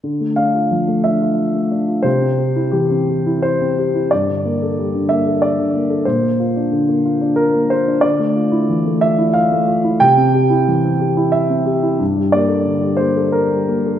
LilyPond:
\new Staff \with { instrumentName = "Grand piano" } { \time 3/4 \key d \minor \tempo 4 = 90 << { r8 f''4 e''4. | c''4 g'4 c''4 | d''4. e''8 d''4 | c''2 bes'8 c''8 |
d''4. e''8 f''4 | g''2 e''8 r8 | r8 d''4 c''8 bes'4 | } \\ { d16 a16 d'16 f'16 f16 a16 d'16 f'8 a16 d'16 f'16 | c16 c'16 g'16 e'16 e16 c'16 g'16 e'8 c'16 g'16 e'16 | g,16 d16 bes16 a'16 g16 d16 bes16 a'8 d16 bes16 a'16 | bes,16 bes16 f'16 d'16 d16 bes16 f'16 d'8 bes16 f'16 d'16 |
d16 a16 f'16 e'16 e16 a16 f'16 e'8 a16 f'16 e'16 | c16 c'16 g'16 e'16 e16 c'16 g'16 e'8 c'16 g'16 e'16 | g,16 g16 bes16 a'16 d16 g16 bes16 a'8 g16 bes16 a'16 | } >> }